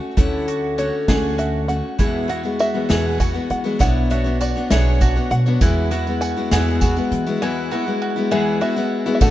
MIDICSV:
0, 0, Header, 1, 6, 480
1, 0, Start_track
1, 0, Tempo, 603015
1, 136, Time_signature, 6, 3, 24, 8
1, 7407, End_track
2, 0, Start_track
2, 0, Title_t, "Five-string banjo"
2, 0, Program_c, 0, 105
2, 624, Note_on_c, 0, 73, 72
2, 1105, Note_on_c, 0, 76, 78
2, 1119, Note_off_c, 0, 73, 0
2, 1336, Note_off_c, 0, 76, 0
2, 1340, Note_on_c, 0, 78, 78
2, 1815, Note_off_c, 0, 78, 0
2, 1825, Note_on_c, 0, 78, 75
2, 2049, Note_off_c, 0, 78, 0
2, 2072, Note_on_c, 0, 76, 92
2, 2544, Note_off_c, 0, 76, 0
2, 2547, Note_on_c, 0, 80, 91
2, 2771, Note_off_c, 0, 80, 0
2, 2791, Note_on_c, 0, 78, 81
2, 3013, Note_off_c, 0, 78, 0
2, 3029, Note_on_c, 0, 78, 98
2, 3252, Note_off_c, 0, 78, 0
2, 3273, Note_on_c, 0, 76, 83
2, 3494, Note_off_c, 0, 76, 0
2, 3514, Note_on_c, 0, 74, 81
2, 3743, Note_off_c, 0, 74, 0
2, 3746, Note_on_c, 0, 76, 78
2, 4227, Note_on_c, 0, 78, 84
2, 4241, Note_off_c, 0, 76, 0
2, 4914, Note_off_c, 0, 78, 0
2, 4942, Note_on_c, 0, 80, 89
2, 5189, Note_off_c, 0, 80, 0
2, 5192, Note_on_c, 0, 78, 83
2, 5874, Note_off_c, 0, 78, 0
2, 5906, Note_on_c, 0, 80, 88
2, 6619, Note_on_c, 0, 76, 82
2, 6827, Note_off_c, 0, 80, 0
2, 6841, Note_off_c, 0, 76, 0
2, 6858, Note_on_c, 0, 76, 92
2, 7250, Note_off_c, 0, 76, 0
2, 7281, Note_on_c, 0, 76, 75
2, 7333, Note_off_c, 0, 76, 0
2, 7336, Note_on_c, 0, 78, 99
2, 7407, Note_off_c, 0, 78, 0
2, 7407, End_track
3, 0, Start_track
3, 0, Title_t, "Mandolin"
3, 0, Program_c, 1, 25
3, 0, Note_on_c, 1, 66, 69
3, 126, Note_off_c, 1, 66, 0
3, 136, Note_on_c, 1, 64, 66
3, 373, Note_off_c, 1, 64, 0
3, 381, Note_on_c, 1, 66, 58
3, 612, Note_off_c, 1, 66, 0
3, 621, Note_on_c, 1, 66, 63
3, 857, Note_off_c, 1, 66, 0
3, 862, Note_on_c, 1, 68, 64
3, 1097, Note_off_c, 1, 68, 0
3, 1100, Note_on_c, 1, 66, 59
3, 1574, Note_off_c, 1, 66, 0
3, 1584, Note_on_c, 1, 64, 68
3, 1820, Note_off_c, 1, 64, 0
3, 1826, Note_on_c, 1, 66, 60
3, 2062, Note_off_c, 1, 66, 0
3, 2070, Note_on_c, 1, 66, 65
3, 2304, Note_off_c, 1, 66, 0
3, 2308, Note_on_c, 1, 68, 67
3, 2543, Note_off_c, 1, 68, 0
3, 2551, Note_on_c, 1, 66, 61
3, 3021, Note_off_c, 1, 66, 0
3, 3031, Note_on_c, 1, 64, 77
3, 3265, Note_off_c, 1, 64, 0
3, 3271, Note_on_c, 1, 66, 60
3, 3498, Note_off_c, 1, 66, 0
3, 3508, Note_on_c, 1, 66, 70
3, 3741, Note_off_c, 1, 66, 0
3, 3745, Note_on_c, 1, 68, 67
3, 3982, Note_off_c, 1, 68, 0
3, 3988, Note_on_c, 1, 66, 69
3, 4458, Note_off_c, 1, 66, 0
3, 4468, Note_on_c, 1, 64, 80
3, 4702, Note_off_c, 1, 64, 0
3, 4706, Note_on_c, 1, 66, 65
3, 4939, Note_off_c, 1, 66, 0
3, 4948, Note_on_c, 1, 66, 73
3, 5182, Note_off_c, 1, 66, 0
3, 5186, Note_on_c, 1, 68, 74
3, 5420, Note_off_c, 1, 68, 0
3, 5425, Note_on_c, 1, 66, 66
3, 5894, Note_off_c, 1, 66, 0
3, 5906, Note_on_c, 1, 64, 78
3, 6138, Note_off_c, 1, 64, 0
3, 6142, Note_on_c, 1, 66, 69
3, 6372, Note_off_c, 1, 66, 0
3, 6382, Note_on_c, 1, 66, 73
3, 6615, Note_off_c, 1, 66, 0
3, 6619, Note_on_c, 1, 68, 78
3, 6853, Note_off_c, 1, 68, 0
3, 6856, Note_on_c, 1, 66, 65
3, 7324, Note_off_c, 1, 66, 0
3, 7407, End_track
4, 0, Start_track
4, 0, Title_t, "Steel-string acoustic guitar"
4, 0, Program_c, 2, 25
4, 0, Note_on_c, 2, 57, 40
4, 0, Note_on_c, 2, 61, 47
4, 0, Note_on_c, 2, 66, 46
4, 128, Note_off_c, 2, 57, 0
4, 133, Note_off_c, 2, 66, 0
4, 134, Note_off_c, 2, 61, 0
4, 134, Note_on_c, 2, 50, 81
4, 138, Note_on_c, 2, 57, 73
4, 143, Note_on_c, 2, 61, 80
4, 147, Note_on_c, 2, 66, 90
4, 610, Note_off_c, 2, 50, 0
4, 616, Note_off_c, 2, 57, 0
4, 620, Note_on_c, 2, 50, 60
4, 623, Note_off_c, 2, 61, 0
4, 625, Note_off_c, 2, 66, 0
4, 625, Note_on_c, 2, 57, 59
4, 631, Note_on_c, 2, 61, 70
4, 634, Note_on_c, 2, 66, 62
4, 850, Note_off_c, 2, 66, 0
4, 856, Note_off_c, 2, 61, 0
4, 860, Note_on_c, 2, 66, 65
4, 861, Note_off_c, 2, 50, 0
4, 861, Note_off_c, 2, 57, 0
4, 866, Note_on_c, 2, 61, 69
4, 870, Note_on_c, 2, 57, 54
4, 872, Note_on_c, 2, 50, 56
4, 1330, Note_off_c, 2, 66, 0
4, 1337, Note_off_c, 2, 61, 0
4, 1339, Note_on_c, 2, 66, 44
4, 1346, Note_off_c, 2, 57, 0
4, 1346, Note_on_c, 2, 61, 49
4, 1349, Note_off_c, 2, 50, 0
4, 1355, Note_on_c, 2, 57, 44
4, 1580, Note_on_c, 2, 40, 63
4, 1582, Note_off_c, 2, 66, 0
4, 1582, Note_on_c, 2, 47, 62
4, 1586, Note_off_c, 2, 57, 0
4, 1586, Note_off_c, 2, 61, 0
4, 1586, Note_on_c, 2, 52, 72
4, 1589, Note_on_c, 2, 56, 74
4, 1591, Note_on_c, 2, 59, 68
4, 1594, Note_on_c, 2, 66, 69
4, 1803, Note_off_c, 2, 52, 0
4, 1812, Note_off_c, 2, 56, 0
4, 1813, Note_on_c, 2, 52, 57
4, 1818, Note_off_c, 2, 59, 0
4, 1822, Note_on_c, 2, 56, 50
4, 1823, Note_off_c, 2, 40, 0
4, 1824, Note_off_c, 2, 47, 0
4, 1824, Note_off_c, 2, 66, 0
4, 1828, Note_on_c, 2, 59, 52
4, 1834, Note_on_c, 2, 66, 56
4, 1926, Note_off_c, 2, 66, 0
4, 1935, Note_off_c, 2, 59, 0
4, 1936, Note_on_c, 2, 66, 43
4, 1939, Note_off_c, 2, 52, 0
4, 1942, Note_off_c, 2, 56, 0
4, 1944, Note_on_c, 2, 59, 37
4, 1951, Note_on_c, 2, 56, 42
4, 1955, Note_on_c, 2, 52, 34
4, 2169, Note_off_c, 2, 66, 0
4, 2174, Note_off_c, 2, 59, 0
4, 2179, Note_on_c, 2, 66, 45
4, 2181, Note_off_c, 2, 56, 0
4, 2183, Note_on_c, 2, 59, 44
4, 2186, Note_off_c, 2, 52, 0
4, 2190, Note_on_c, 2, 56, 42
4, 2196, Note_on_c, 2, 52, 37
4, 2291, Note_off_c, 2, 52, 0
4, 2294, Note_off_c, 2, 56, 0
4, 2298, Note_on_c, 2, 40, 72
4, 2298, Note_on_c, 2, 47, 65
4, 2299, Note_off_c, 2, 59, 0
4, 2301, Note_off_c, 2, 66, 0
4, 2301, Note_on_c, 2, 52, 73
4, 2304, Note_on_c, 2, 56, 75
4, 2309, Note_on_c, 2, 59, 73
4, 2310, Note_on_c, 2, 66, 77
4, 2521, Note_off_c, 2, 52, 0
4, 2531, Note_on_c, 2, 52, 51
4, 2532, Note_off_c, 2, 56, 0
4, 2537, Note_off_c, 2, 59, 0
4, 2539, Note_off_c, 2, 66, 0
4, 2542, Note_on_c, 2, 56, 46
4, 2543, Note_off_c, 2, 40, 0
4, 2543, Note_off_c, 2, 47, 0
4, 2546, Note_on_c, 2, 59, 51
4, 2548, Note_on_c, 2, 66, 51
4, 2647, Note_off_c, 2, 66, 0
4, 2654, Note_off_c, 2, 59, 0
4, 2656, Note_on_c, 2, 66, 45
4, 2660, Note_off_c, 2, 52, 0
4, 2660, Note_off_c, 2, 56, 0
4, 2663, Note_on_c, 2, 59, 47
4, 2670, Note_on_c, 2, 56, 44
4, 2675, Note_on_c, 2, 52, 37
4, 2887, Note_off_c, 2, 66, 0
4, 2890, Note_off_c, 2, 59, 0
4, 2896, Note_on_c, 2, 66, 46
4, 2898, Note_off_c, 2, 56, 0
4, 2900, Note_on_c, 2, 59, 46
4, 2901, Note_off_c, 2, 52, 0
4, 2908, Note_on_c, 2, 56, 47
4, 2910, Note_on_c, 2, 52, 41
4, 3011, Note_off_c, 2, 59, 0
4, 3017, Note_off_c, 2, 52, 0
4, 3017, Note_on_c, 2, 47, 66
4, 3017, Note_on_c, 2, 54, 67
4, 3018, Note_off_c, 2, 66, 0
4, 3021, Note_on_c, 2, 59, 77
4, 3022, Note_off_c, 2, 56, 0
4, 3025, Note_on_c, 2, 62, 70
4, 3028, Note_on_c, 2, 66, 83
4, 3029, Note_on_c, 2, 73, 72
4, 3253, Note_off_c, 2, 59, 0
4, 3259, Note_off_c, 2, 62, 0
4, 3262, Note_on_c, 2, 59, 57
4, 3263, Note_off_c, 2, 47, 0
4, 3263, Note_off_c, 2, 54, 0
4, 3263, Note_off_c, 2, 66, 0
4, 3269, Note_off_c, 2, 73, 0
4, 3269, Note_on_c, 2, 62, 57
4, 3272, Note_on_c, 2, 66, 58
4, 3279, Note_on_c, 2, 73, 62
4, 3366, Note_off_c, 2, 73, 0
4, 3375, Note_on_c, 2, 73, 47
4, 3377, Note_off_c, 2, 66, 0
4, 3380, Note_off_c, 2, 62, 0
4, 3386, Note_off_c, 2, 59, 0
4, 3386, Note_on_c, 2, 66, 41
4, 3390, Note_on_c, 2, 62, 41
4, 3394, Note_on_c, 2, 59, 38
4, 3616, Note_off_c, 2, 73, 0
4, 3622, Note_off_c, 2, 66, 0
4, 3625, Note_on_c, 2, 73, 45
4, 3626, Note_off_c, 2, 62, 0
4, 3631, Note_off_c, 2, 59, 0
4, 3631, Note_on_c, 2, 66, 51
4, 3635, Note_on_c, 2, 62, 43
4, 3642, Note_on_c, 2, 59, 47
4, 3741, Note_off_c, 2, 59, 0
4, 3742, Note_off_c, 2, 62, 0
4, 3745, Note_off_c, 2, 66, 0
4, 3745, Note_on_c, 2, 47, 67
4, 3745, Note_on_c, 2, 54, 75
4, 3747, Note_off_c, 2, 73, 0
4, 3750, Note_on_c, 2, 59, 77
4, 3751, Note_on_c, 2, 62, 83
4, 3755, Note_on_c, 2, 66, 77
4, 3756, Note_on_c, 2, 73, 80
4, 3975, Note_off_c, 2, 59, 0
4, 3982, Note_off_c, 2, 62, 0
4, 3985, Note_on_c, 2, 59, 49
4, 3986, Note_off_c, 2, 66, 0
4, 3987, Note_off_c, 2, 47, 0
4, 3987, Note_off_c, 2, 54, 0
4, 3992, Note_off_c, 2, 73, 0
4, 3992, Note_on_c, 2, 62, 55
4, 3995, Note_on_c, 2, 66, 57
4, 4001, Note_on_c, 2, 73, 55
4, 4095, Note_off_c, 2, 73, 0
4, 4100, Note_off_c, 2, 66, 0
4, 4105, Note_on_c, 2, 73, 45
4, 4106, Note_off_c, 2, 62, 0
4, 4107, Note_off_c, 2, 59, 0
4, 4109, Note_on_c, 2, 66, 44
4, 4115, Note_on_c, 2, 62, 42
4, 4122, Note_on_c, 2, 59, 41
4, 4336, Note_off_c, 2, 73, 0
4, 4345, Note_off_c, 2, 66, 0
4, 4345, Note_on_c, 2, 73, 57
4, 4349, Note_off_c, 2, 62, 0
4, 4354, Note_on_c, 2, 66, 52
4, 4355, Note_off_c, 2, 59, 0
4, 4358, Note_on_c, 2, 62, 50
4, 4364, Note_on_c, 2, 59, 47
4, 4464, Note_off_c, 2, 59, 0
4, 4467, Note_off_c, 2, 73, 0
4, 4467, Note_on_c, 2, 40, 72
4, 4469, Note_off_c, 2, 66, 0
4, 4469, Note_on_c, 2, 52, 74
4, 4471, Note_off_c, 2, 62, 0
4, 4474, Note_on_c, 2, 56, 76
4, 4474, Note_on_c, 2, 59, 72
4, 4477, Note_on_c, 2, 64, 83
4, 4479, Note_on_c, 2, 66, 75
4, 4692, Note_off_c, 2, 56, 0
4, 4698, Note_off_c, 2, 59, 0
4, 4702, Note_on_c, 2, 56, 54
4, 4704, Note_off_c, 2, 66, 0
4, 4707, Note_off_c, 2, 40, 0
4, 4707, Note_on_c, 2, 59, 66
4, 4708, Note_off_c, 2, 52, 0
4, 4709, Note_off_c, 2, 64, 0
4, 4713, Note_on_c, 2, 66, 65
4, 4719, Note_on_c, 2, 64, 61
4, 4818, Note_off_c, 2, 64, 0
4, 4823, Note_off_c, 2, 66, 0
4, 4824, Note_off_c, 2, 56, 0
4, 4827, Note_off_c, 2, 59, 0
4, 4827, Note_on_c, 2, 64, 46
4, 4832, Note_on_c, 2, 66, 40
4, 4839, Note_on_c, 2, 59, 43
4, 4844, Note_on_c, 2, 56, 39
4, 5057, Note_off_c, 2, 64, 0
4, 5065, Note_off_c, 2, 66, 0
4, 5067, Note_on_c, 2, 64, 52
4, 5069, Note_off_c, 2, 59, 0
4, 5072, Note_off_c, 2, 56, 0
4, 5075, Note_on_c, 2, 66, 50
4, 5078, Note_on_c, 2, 59, 45
4, 5082, Note_on_c, 2, 56, 42
4, 5181, Note_off_c, 2, 56, 0
4, 5183, Note_off_c, 2, 59, 0
4, 5184, Note_on_c, 2, 40, 77
4, 5185, Note_off_c, 2, 66, 0
4, 5186, Note_off_c, 2, 64, 0
4, 5186, Note_on_c, 2, 52, 79
4, 5191, Note_on_c, 2, 56, 78
4, 5193, Note_on_c, 2, 59, 73
4, 5194, Note_on_c, 2, 64, 85
4, 5194, Note_on_c, 2, 66, 80
4, 5417, Note_off_c, 2, 56, 0
4, 5424, Note_off_c, 2, 40, 0
4, 5425, Note_off_c, 2, 52, 0
4, 5426, Note_off_c, 2, 59, 0
4, 5426, Note_on_c, 2, 56, 49
4, 5429, Note_off_c, 2, 64, 0
4, 5429, Note_off_c, 2, 66, 0
4, 5435, Note_on_c, 2, 59, 63
4, 5440, Note_on_c, 2, 66, 62
4, 5445, Note_on_c, 2, 64, 54
4, 5535, Note_off_c, 2, 64, 0
4, 5541, Note_off_c, 2, 66, 0
4, 5545, Note_off_c, 2, 56, 0
4, 5545, Note_on_c, 2, 64, 51
4, 5547, Note_off_c, 2, 59, 0
4, 5551, Note_on_c, 2, 66, 45
4, 5556, Note_on_c, 2, 59, 46
4, 5561, Note_on_c, 2, 56, 43
4, 5774, Note_off_c, 2, 64, 0
4, 5778, Note_off_c, 2, 66, 0
4, 5783, Note_off_c, 2, 59, 0
4, 5783, Note_on_c, 2, 64, 58
4, 5787, Note_on_c, 2, 66, 53
4, 5790, Note_off_c, 2, 56, 0
4, 5792, Note_on_c, 2, 59, 51
4, 5799, Note_on_c, 2, 56, 53
4, 5900, Note_off_c, 2, 56, 0
4, 5903, Note_off_c, 2, 59, 0
4, 5903, Note_off_c, 2, 64, 0
4, 5905, Note_off_c, 2, 66, 0
4, 5905, Note_on_c, 2, 40, 74
4, 5908, Note_on_c, 2, 52, 80
4, 5910, Note_on_c, 2, 56, 71
4, 5913, Note_on_c, 2, 59, 78
4, 5917, Note_on_c, 2, 64, 83
4, 5917, Note_on_c, 2, 66, 81
4, 6129, Note_off_c, 2, 56, 0
4, 6138, Note_off_c, 2, 59, 0
4, 6139, Note_on_c, 2, 56, 62
4, 6140, Note_off_c, 2, 66, 0
4, 6143, Note_off_c, 2, 40, 0
4, 6144, Note_off_c, 2, 52, 0
4, 6144, Note_off_c, 2, 64, 0
4, 6147, Note_on_c, 2, 59, 55
4, 6149, Note_on_c, 2, 66, 60
4, 6153, Note_on_c, 2, 64, 76
4, 6247, Note_off_c, 2, 64, 0
4, 6254, Note_off_c, 2, 66, 0
4, 6256, Note_on_c, 2, 64, 45
4, 6258, Note_off_c, 2, 59, 0
4, 6260, Note_off_c, 2, 56, 0
4, 6263, Note_on_c, 2, 66, 41
4, 6268, Note_on_c, 2, 59, 42
4, 6272, Note_on_c, 2, 56, 40
4, 6485, Note_off_c, 2, 64, 0
4, 6494, Note_on_c, 2, 64, 60
4, 6495, Note_off_c, 2, 66, 0
4, 6499, Note_off_c, 2, 59, 0
4, 6505, Note_off_c, 2, 56, 0
4, 6505, Note_on_c, 2, 66, 54
4, 6508, Note_on_c, 2, 59, 51
4, 6513, Note_on_c, 2, 56, 49
4, 6612, Note_off_c, 2, 56, 0
4, 6615, Note_off_c, 2, 59, 0
4, 6615, Note_off_c, 2, 66, 0
4, 6616, Note_off_c, 2, 64, 0
4, 6616, Note_on_c, 2, 52, 79
4, 6617, Note_on_c, 2, 40, 77
4, 6621, Note_on_c, 2, 56, 86
4, 6624, Note_on_c, 2, 66, 90
4, 6625, Note_on_c, 2, 59, 86
4, 6625, Note_on_c, 2, 64, 90
4, 6843, Note_off_c, 2, 56, 0
4, 6850, Note_off_c, 2, 59, 0
4, 6852, Note_off_c, 2, 66, 0
4, 6852, Note_on_c, 2, 56, 56
4, 6856, Note_off_c, 2, 40, 0
4, 6856, Note_off_c, 2, 52, 0
4, 6860, Note_off_c, 2, 64, 0
4, 6860, Note_on_c, 2, 59, 58
4, 6862, Note_on_c, 2, 66, 61
4, 6871, Note_on_c, 2, 64, 66
4, 6964, Note_off_c, 2, 64, 0
4, 6970, Note_off_c, 2, 66, 0
4, 6974, Note_off_c, 2, 56, 0
4, 6974, Note_on_c, 2, 64, 56
4, 6978, Note_off_c, 2, 59, 0
4, 6979, Note_on_c, 2, 66, 58
4, 6986, Note_on_c, 2, 59, 59
4, 6989, Note_on_c, 2, 56, 47
4, 7201, Note_off_c, 2, 64, 0
4, 7206, Note_off_c, 2, 66, 0
4, 7210, Note_on_c, 2, 64, 64
4, 7211, Note_off_c, 2, 59, 0
4, 7215, Note_off_c, 2, 56, 0
4, 7215, Note_on_c, 2, 66, 61
4, 7220, Note_on_c, 2, 59, 61
4, 7225, Note_on_c, 2, 56, 59
4, 7328, Note_off_c, 2, 56, 0
4, 7330, Note_off_c, 2, 66, 0
4, 7330, Note_on_c, 2, 45, 72
4, 7331, Note_on_c, 2, 50, 77
4, 7332, Note_off_c, 2, 64, 0
4, 7333, Note_off_c, 2, 59, 0
4, 7337, Note_on_c, 2, 57, 85
4, 7339, Note_on_c, 2, 62, 81
4, 7340, Note_on_c, 2, 66, 79
4, 7407, Note_off_c, 2, 45, 0
4, 7407, Note_off_c, 2, 50, 0
4, 7407, Note_off_c, 2, 57, 0
4, 7407, Note_off_c, 2, 62, 0
4, 7407, Note_off_c, 2, 66, 0
4, 7407, End_track
5, 0, Start_track
5, 0, Title_t, "Upright bass"
5, 0, Program_c, 3, 32
5, 138, Note_on_c, 3, 38, 78
5, 705, Note_off_c, 3, 38, 0
5, 863, Note_on_c, 3, 38, 95
5, 1429, Note_off_c, 3, 38, 0
5, 1585, Note_on_c, 3, 40, 71
5, 2151, Note_off_c, 3, 40, 0
5, 2307, Note_on_c, 3, 40, 86
5, 2684, Note_off_c, 3, 40, 0
5, 2789, Note_on_c, 3, 52, 80
5, 2977, Note_off_c, 3, 52, 0
5, 3027, Note_on_c, 3, 35, 82
5, 3592, Note_off_c, 3, 35, 0
5, 3747, Note_on_c, 3, 35, 87
5, 4124, Note_off_c, 3, 35, 0
5, 4226, Note_on_c, 3, 47, 90
5, 4415, Note_off_c, 3, 47, 0
5, 4467, Note_on_c, 3, 40, 83
5, 5030, Note_off_c, 3, 40, 0
5, 5187, Note_on_c, 3, 40, 98
5, 5561, Note_off_c, 3, 40, 0
5, 5664, Note_on_c, 3, 52, 88
5, 5852, Note_off_c, 3, 52, 0
5, 7331, Note_on_c, 3, 45, 83
5, 7407, Note_off_c, 3, 45, 0
5, 7407, End_track
6, 0, Start_track
6, 0, Title_t, "Drums"
6, 139, Note_on_c, 9, 36, 94
6, 139, Note_on_c, 9, 42, 67
6, 218, Note_off_c, 9, 36, 0
6, 219, Note_off_c, 9, 42, 0
6, 382, Note_on_c, 9, 42, 56
6, 461, Note_off_c, 9, 42, 0
6, 622, Note_on_c, 9, 42, 59
6, 702, Note_off_c, 9, 42, 0
6, 862, Note_on_c, 9, 36, 67
6, 862, Note_on_c, 9, 38, 97
6, 862, Note_on_c, 9, 42, 70
6, 941, Note_off_c, 9, 38, 0
6, 941, Note_off_c, 9, 42, 0
6, 942, Note_off_c, 9, 36, 0
6, 1104, Note_on_c, 9, 42, 60
6, 1183, Note_off_c, 9, 42, 0
6, 1345, Note_on_c, 9, 42, 54
6, 1425, Note_off_c, 9, 42, 0
6, 1585, Note_on_c, 9, 36, 87
6, 1585, Note_on_c, 9, 42, 69
6, 1588, Note_on_c, 9, 54, 65
6, 1664, Note_off_c, 9, 36, 0
6, 1664, Note_off_c, 9, 42, 0
6, 1667, Note_off_c, 9, 54, 0
6, 1826, Note_on_c, 9, 42, 54
6, 1906, Note_off_c, 9, 42, 0
6, 1949, Note_on_c, 9, 54, 21
6, 2029, Note_off_c, 9, 54, 0
6, 2064, Note_on_c, 9, 54, 67
6, 2068, Note_on_c, 9, 42, 49
6, 2143, Note_off_c, 9, 54, 0
6, 2148, Note_off_c, 9, 42, 0
6, 2307, Note_on_c, 9, 38, 89
6, 2307, Note_on_c, 9, 42, 74
6, 2386, Note_off_c, 9, 38, 0
6, 2386, Note_off_c, 9, 42, 0
6, 2547, Note_on_c, 9, 36, 69
6, 2548, Note_on_c, 9, 42, 53
6, 2548, Note_on_c, 9, 54, 78
6, 2627, Note_off_c, 9, 36, 0
6, 2627, Note_off_c, 9, 42, 0
6, 2627, Note_off_c, 9, 54, 0
6, 2671, Note_on_c, 9, 54, 25
6, 2751, Note_off_c, 9, 54, 0
6, 2786, Note_on_c, 9, 42, 54
6, 2865, Note_off_c, 9, 42, 0
6, 2915, Note_on_c, 9, 54, 26
6, 2995, Note_off_c, 9, 54, 0
6, 3024, Note_on_c, 9, 42, 68
6, 3028, Note_on_c, 9, 36, 92
6, 3032, Note_on_c, 9, 54, 75
6, 3104, Note_off_c, 9, 42, 0
6, 3107, Note_off_c, 9, 36, 0
6, 3111, Note_off_c, 9, 54, 0
6, 3268, Note_on_c, 9, 42, 54
6, 3347, Note_off_c, 9, 42, 0
6, 3392, Note_on_c, 9, 54, 26
6, 3472, Note_off_c, 9, 54, 0
6, 3508, Note_on_c, 9, 42, 61
6, 3511, Note_on_c, 9, 54, 82
6, 3587, Note_off_c, 9, 42, 0
6, 3591, Note_off_c, 9, 54, 0
6, 3745, Note_on_c, 9, 38, 100
6, 3745, Note_on_c, 9, 42, 73
6, 3824, Note_off_c, 9, 38, 0
6, 3824, Note_off_c, 9, 42, 0
6, 3986, Note_on_c, 9, 42, 54
6, 3988, Note_on_c, 9, 36, 69
6, 3991, Note_on_c, 9, 54, 90
6, 4065, Note_off_c, 9, 42, 0
6, 4067, Note_off_c, 9, 36, 0
6, 4071, Note_off_c, 9, 54, 0
6, 4117, Note_on_c, 9, 54, 25
6, 4197, Note_off_c, 9, 54, 0
6, 4226, Note_on_c, 9, 42, 56
6, 4305, Note_off_c, 9, 42, 0
6, 4351, Note_on_c, 9, 54, 30
6, 4430, Note_off_c, 9, 54, 0
6, 4465, Note_on_c, 9, 54, 89
6, 4467, Note_on_c, 9, 36, 97
6, 4467, Note_on_c, 9, 42, 79
6, 4545, Note_off_c, 9, 54, 0
6, 4546, Note_off_c, 9, 42, 0
6, 4547, Note_off_c, 9, 36, 0
6, 4707, Note_on_c, 9, 42, 54
6, 4787, Note_off_c, 9, 42, 0
6, 4832, Note_on_c, 9, 54, 28
6, 4911, Note_off_c, 9, 54, 0
6, 4947, Note_on_c, 9, 54, 88
6, 4948, Note_on_c, 9, 42, 59
6, 5027, Note_off_c, 9, 42, 0
6, 5027, Note_off_c, 9, 54, 0
6, 5185, Note_on_c, 9, 38, 97
6, 5185, Note_on_c, 9, 42, 85
6, 5265, Note_off_c, 9, 38, 0
6, 5265, Note_off_c, 9, 42, 0
6, 5422, Note_on_c, 9, 54, 103
6, 5426, Note_on_c, 9, 36, 73
6, 5427, Note_on_c, 9, 42, 56
6, 5501, Note_off_c, 9, 54, 0
6, 5505, Note_off_c, 9, 36, 0
6, 5506, Note_off_c, 9, 42, 0
6, 5543, Note_on_c, 9, 54, 29
6, 5623, Note_off_c, 9, 54, 0
6, 5665, Note_on_c, 9, 42, 63
6, 5745, Note_off_c, 9, 42, 0
6, 5782, Note_on_c, 9, 54, 30
6, 5861, Note_off_c, 9, 54, 0
6, 7330, Note_on_c, 9, 51, 75
6, 7333, Note_on_c, 9, 36, 99
6, 7335, Note_on_c, 9, 54, 93
6, 7407, Note_off_c, 9, 36, 0
6, 7407, Note_off_c, 9, 51, 0
6, 7407, Note_off_c, 9, 54, 0
6, 7407, End_track
0, 0, End_of_file